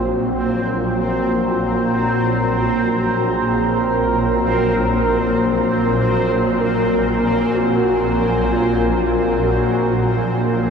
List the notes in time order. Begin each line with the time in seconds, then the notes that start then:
Already playing: A#1 A#2 F#3 A#3 C4 A#4 C5 A#5
0.03 F#4
0.49 F4
0.97 F#4
3.32 G#4
3.78 A#4
4.49 A#4
5.18 C5
5.67 C5
6.12 G#5
6.60 A#4
7.55 F#4
8.51 F4
9.43 F#4